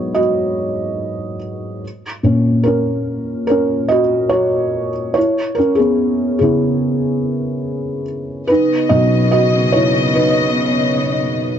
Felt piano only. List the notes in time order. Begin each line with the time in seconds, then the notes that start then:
Already playing: G#2 F#3 B3 F#4 C#5 D#5
0.14 F#4 D#5
2.23 A#2 A#3 C#4
2.63 C#4 A#4
3.47 C#4 A#4
3.88 F#4 D#5
4.29 F#4 C#5
5.14 E4 C#5
5.55 C#4 A#4
5.75 B3 G#4
6.39 C#3 B3 E4 G#4
8.47 D#4 B4
8.89 B2 F#3 D#4 F#4 D#5
9.31 F#4 D#5
9.72 E4 C#5
10.14 D#4 B4